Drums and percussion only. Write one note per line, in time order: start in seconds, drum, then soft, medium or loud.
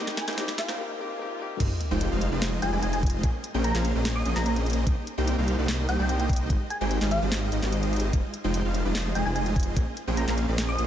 0.07 snare medium
0.17 snare medium
0.17 closed hi-hat medium
0.28 snare medium
0.28 closed hi-hat soft
0.33 closed hi-hat medium
0.38 snare loud
0.38 closed hi-hat medium
0.48 snare medium
0.58 snare loud
0.58 closed hi-hat medium
0.69 snare medium
1.60 kick loud
1.60 closed hi-hat medium
1.60 crash loud
1.81 closed hi-hat medium
2.01 closed hi-hat medium
2.21 closed hi-hat medium
2.42 snare loud
2.42 closed hi-hat medium
2.62 closed hi-hat medium
2.83 closed hi-hat medium
2.93 closed hi-hat medium
3.03 kick loud
3.03 closed hi-hat soft
3.06 closed hi-hat medium
3.10 closed hi-hat medium
3.23 kick loud
3.23 closed hi-hat medium
3.44 closed hi-hat medium
3.64 closed hi-hat medium
3.75 snare soft
3.85 closed hi-hat medium
4.05 snare loud
4.05 closed hi-hat medium
4.26 closed hi-hat medium
4.36 snare soft
4.46 closed hi-hat medium
4.56 closed hi-hat medium
4.66 closed hi-hat soft
4.70 closed hi-hat medium
4.73 closed hi-hat medium
4.87 kick loud
4.87 closed hi-hat medium
5.07 closed hi-hat medium
5.28 closed hi-hat medium
5.48 closed hi-hat medium
5.68 snare loud
5.68 closed hi-hat medium
5.89 closed hi-hat medium
6.09 closed hi-hat medium
6.20 closed hi-hat medium
6.29 kick loud
6.29 closed hi-hat soft
6.33 closed hi-hat medium
6.36 closed hi-hat medium
6.50 kick loud
6.50 closed hi-hat medium
6.70 closed hi-hat medium
6.91 closed hi-hat medium
7.01 snare soft
7.11 closed hi-hat medium
7.32 snare loud
7.32 closed hi-hat medium
7.52 closed hi-hat medium
7.62 snare soft
7.72 closed hi-hat medium
7.83 closed hi-hat medium
7.93 closed hi-hat soft
7.96 closed hi-hat medium
8.00 closed hi-hat medium
8.13 kick loud
8.13 closed hi-hat medium
8.34 closed hi-hat medium
8.54 closed hi-hat medium
8.74 closed hi-hat medium
8.95 snare loud
8.95 closed hi-hat medium
9.15 closed hi-hat medium
9.36 closed hi-hat medium
9.46 closed hi-hat medium
9.56 kick loud
9.56 closed hi-hat soft
9.60 closed hi-hat medium
9.63 closed hi-hat medium
9.77 kick loud
9.77 closed hi-hat medium
9.97 closed hi-hat medium
10.17 closed hi-hat medium
10.28 snare soft
10.38 closed hi-hat medium
10.58 snare loud
10.58 closed hi-hat medium
10.79 closed hi-hat medium